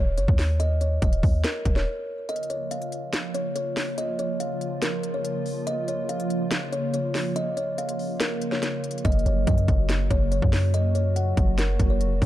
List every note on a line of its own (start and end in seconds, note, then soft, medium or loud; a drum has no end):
0.00 0.19 D#1 loud
0.00 0.16 C#5 medium
0.18 0.28 F#1 loud
0.18 0.57 C#5 medium
0.18 closed hi-hat medium
0.28 0.99 D#2 loud
0.28 kick medium
0.39 snare loud
0.39 open hi-hat medium
0.60 0.79 D#5 loud
0.60 closed hi-hat loud
0.81 1.01 C#5 medium
0.81 closed hi-hat medium
1.02 1.22 D#1 loud
1.02 1.42 D#5 medium
1.02 kick loud
1.02 closed hi-hat medium
1.13 closed hi-hat medium
1.23 1.43 D#2 loud
1.23 kick loud
1.23 open hi-hat soft
1.44 1.74 A#4 medium
1.44 snare loud
1.44 closed hi-hat medium
1.65 1.86 D#1 loud
1.65 kick medium
1.65 closed hi-hat medium
1.76 2.26 C#5 medium
1.76 snare medium
2.29 12.26 C#3 medium
2.29 9.01 F3 medium
2.29 12.26 A#3 medium
2.29 9.01 F4 medium
2.29 2.48 D#5 loud
2.29 closed hi-hat medium
2.36 closed hi-hat medium
2.43 closed hi-hat soft
2.50 2.69 C#5 medium
2.50 closed hi-hat medium
2.71 3.11 F5 medium
2.71 closed hi-hat medium
2.82 closed hi-hat medium
2.92 closed hi-hat medium
3.13 snare loud
3.13 closed hi-hat medium
3.34 3.54 C#5 medium
3.34 closed hi-hat medium
3.56 3.95 C#5 medium
3.56 closed hi-hat medium
3.77 snare medium
3.77 open hi-hat medium
3.98 4.17 D#5 loud
3.98 closed hi-hat loud
4.19 4.39 C#5 medium
4.19 closed hi-hat medium
4.40 4.80 F5 medium
4.40 closed hi-hat medium
4.61 closed hi-hat medium
4.82 5.12 A#4 medium
4.82 snare loud
4.82 closed hi-hat medium
5.03 closed hi-hat medium
5.14 5.64 C#5 medium
5.25 closed hi-hat medium
5.46 open hi-hat medium
5.67 5.86 D#5 loud
5.67 closed hi-hat loud
5.88 6.08 C#5 medium
5.88 closed hi-hat medium
6.09 6.49 F5 medium
6.09 closed hi-hat medium
6.20 closed hi-hat medium
6.30 closed hi-hat medium
6.51 snare loud
6.51 closed hi-hat medium
6.72 6.92 C#5 medium
6.72 closed hi-hat medium
6.94 7.33 C#5 medium
6.94 closed hi-hat medium
7.15 snare loud
7.15 open hi-hat medium
7.36 7.55 D#5 loud
7.36 closed hi-hat loud
7.57 7.77 C#5 medium
7.57 closed hi-hat medium
7.78 8.18 F5 medium
7.78 closed hi-hat medium
7.89 closed hi-hat medium
7.99 open hi-hat soft
8.20 8.50 A#4 medium
8.20 snare loud
8.20 closed hi-hat medium
8.42 closed hi-hat medium
8.52 9.02 C#5 medium
8.52 snare medium
8.63 snare medium
8.63 closed hi-hat medium
8.84 closed hi-hat medium
8.91 closed hi-hat medium
8.98 closed hi-hat medium
9.05 9.25 F#1 loud
9.05 12.26 F#3 medium
9.05 12.26 F#4 medium
9.05 9.24 D#5 loud
9.05 kick loud
9.05 closed hi-hat medium
9.12 closed hi-hat medium
9.19 closed hi-hat soft
9.26 9.46 F#1 loud
9.26 9.46 C#5 medium
9.26 closed hi-hat medium
9.47 9.67 F#2 loud
9.47 9.87 D#5 medium
9.47 kick loud
9.47 closed hi-hat medium
9.58 closed hi-hat medium
9.68 10.09 F#1 loud
9.68 kick loud
9.68 closed hi-hat medium
9.89 snare loud
9.89 closed hi-hat medium
10.10 10.41 F#1 loud
10.10 10.30 C#5 medium
10.10 kick medium
10.10 closed hi-hat medium
10.32 10.71 C#5 medium
10.32 closed hi-hat medium
10.42 11.34 F#2 loud
10.42 kick medium
10.53 snare medium
10.53 open hi-hat medium
10.74 10.94 D#5 loud
10.74 closed hi-hat medium
10.95 11.14 C#5 medium
10.95 closed hi-hat medium
11.16 11.56 F#5 medium
11.16 closed hi-hat medium
11.37 11.78 F#1 loud
11.37 kick loud
11.37 closed hi-hat medium
11.58 11.88 A#4 medium
11.58 snare loud
11.58 closed hi-hat medium
11.79 12.02 F#1 loud
11.79 kick medium
11.79 closed hi-hat medium
11.90 12.26 C#5 medium
12.01 12.21 F1 loud
12.01 closed hi-hat medium
12.22 12.26 F#1 loud
12.22 kick loud
12.22 open hi-hat medium